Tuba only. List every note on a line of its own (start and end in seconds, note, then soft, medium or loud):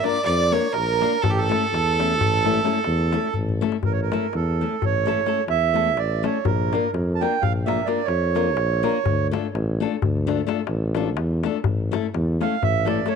0.25 0.55 F2 loud
0.74 1.04 A#1 medium
1.23 1.53 A1 medium
1.72 2.23 E2 medium
2.21 2.60 A1 medium
2.86 3.16 E2 medium
3.36 3.65 A1 medium
3.84 4.13 A1 medium
4.35 4.63 E2 medium
4.83 5.22 A1 medium
5.48 5.98 E2 medium
5.97 6.26 A1 medium
6.45 6.74 A#1 medium
6.94 7.23 F2 loud
7.42 7.81 A#1 medium
8.07 8.57 F2 medium
8.56 8.85 A#1 medium
9.05 9.35 D2 medium
9.54 9.84 A1 loud
10.03 10.42 D2 medium
10.69 11.18 A1 loud
11.17 11.46 E2 medium
11.65 11.94 A1 medium
12.15 12.43 E2 loud
12.62 13.01 A1 medium